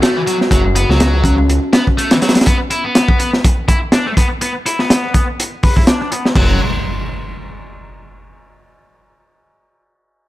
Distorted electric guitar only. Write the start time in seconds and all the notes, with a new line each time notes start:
0.03 A3
0.16 E3
0.27 F#3
0.51 F#3
0.76 B3
0.90 F#3
1.25 F#3
1.73 B3
1.98 A3
2.11 E3
2.22 F#3
2.47 B3
2.71 E4
2.84 B3
3.20 B3
3.68 E4
3.93 D4
4.06 A3
4.17 B3
4.42 B3
4.66 E4
4.79 B3
5.15 B3
5.64 B4
5.77 E4
5.88 D4
6.02 D4
6.12 B3
6.37 F#3